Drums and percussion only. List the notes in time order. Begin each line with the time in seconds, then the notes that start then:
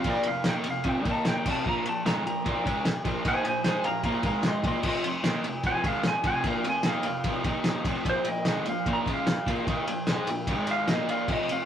0.04 kick, ride
0.23 ride
0.44 snare, ride
0.64 ride
0.84 kick, ride
1.05 kick, ride
1.25 snare, ride
1.46 kick, crash
1.66 kick
1.86 ride
2.06 snare, ride
2.27 ride
2.46 kick, ride
2.66 kick, ride
2.85 snare, ride
3.05 kick, ride
3.25 kick, ride
3.45 ride
3.64 snare, ride
3.84 ride
4.03 kick, ride
4.23 kick, ride
4.43 snare, ride
4.64 kick, ride
4.83 kick, crash
5.04 ride
5.24 snare, ride
5.44 ride
5.63 kick, ride
5.84 kick, ride
6.03 snare, ride
6.24 kick, ride
6.44 kick, ride
6.64 ride
6.83 snare, ride
7.03 ride
7.24 kick, ride
7.44 kick, ride
7.64 snare, ride
7.85 kick, ride
8.05 kick, ride
8.25 ride
8.45 snare, ride
8.65 ride
8.86 kick, ride
9.06 kick, ride
9.27 snare, ride
9.46 kick, ride
9.67 kick, ride
9.87 ride
10.07 snare, ride
10.27 ride
10.47 kick, ride
10.67 ride
10.88 snare, ride
11.09 ride
11.28 kick, crash
11.49 ride